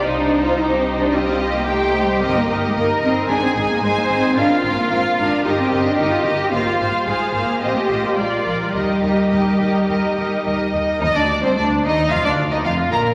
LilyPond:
<<
  \new Staff \with { instrumentName = "Violin section" } { \time 4/4 \key c \dorian \tempo 4 = 110 c''2 ees''4 g''4 | \key ees \major ees''8 ees''8 ees''8 ees''8 aes''8 aes''8 aes''8 aes''8 | f''8 f''8 f''8 f''8 ees''8 ees''8 ees''8 ees''8 | f''8 f''8 f''8 f''8 ees''8 ees''8 d''8 d''8 |
ees''8 ees''8 ees''8 ees''8 ees''8 ees''8 ees''8 ees''8 | ees''16 d''8 c''16 d''8 ees''8 f''16 d''8 ees''16 f''8 bes''8 | }
  \new Staff \with { instrumentName = "Viola section" } { \time 4/4 \key c \dorian ees'4 g'4 f'4 <ees' c''>4 | \key ees \major <ees' bes'>8 <ees' bes'>8 <ees' bes'>8 <ees' bes'>8 <ees' aes'>8 <ees' aes'>8 <ees' aes'>8 <ees' aes'>8 | <f' bes'>8 <f' bes'>8 <f' bes'>8 <f' bes'>8 <g' bes'>8 <g' bes'>8 <g' bes'>8 <g' bes'>8 | <f' c''>8 <f' c''>8 <f' c''>8 <f' c''>8 <f' c''>8 <f' c''>8 <f' bes'>8 <f' bes'>8 |
<ees' bes'>8 <ees' bes'>8 <ees' bes'>8 <ees' bes'>8 <ees' bes'>8 <ees' bes'>8 <ees' bes'>8 <ees' bes'>8 | ees'16 d'8 c'16 d'8 ees'8 f'16 d'8 ees'16 f'8 bes'8 | }
  \new Staff \with { instrumentName = "Violin section" } { \time 4/4 \key c \dorian ees'2 g'2~ | \key ees \major g'4 bes'4 aes'4 c''4 | f'2 g'2 | f'4 aes'4 g'4 f'4 |
g'2.~ g'8 r8 | ees'16 d'8 c'16 d'8 ees'8 f'16 d'8 ees'16 f'8 bes'8 | }
  \new Staff \with { instrumentName = "Cello section" } { \time 4/4 \key c \dorian ees'16 d'8 f'16 ees'16 c'8 d'16 c'16 c'8 bes16 \tuplet 3/2 { a4 g8 } | \key ees \major c'16 bes8 aes16 bes8 c'8 d'16 c'8 bes16 aes16 bes16 c'8 | d'16 c'8 bes16 c'8 d'8 ees'16 c'8 d'16 ees'16 f'16 g'8 | bes16 aes8 g16 aes8 bes8 c'16 a8 bes16 aes8 f8 |
g2. r4 | ees,16 d,8 c,16 d,8 ees,8 f,16 d,8 ees,16 f,8 bes,8 | }
  \new Staff \with { instrumentName = "Double bass section" } { \clef bass \time 4/4 \key c \dorian c,1 | \key ees \major g,,8 g,,8 g,,8 g,,8 aes,,8 aes,,8 aes,,8 aes,,8 | aes,,8 aes,,8 aes,,8 aes,,8 g,,8 g,,8 g,,8 g,,8 | aes,,8 aes,,8 aes,,8 aes,,8 a,,8 a,,8 bes,,8 bes,,8 |
ees,8 ees,8 ees,8 ees,8 ees,8 ees,8 ees,8 ees,8 | ees,16 d,8 r16 d,8 ees,8 f,,16 d,8 r16 f,,8 bes,,8 | }
>>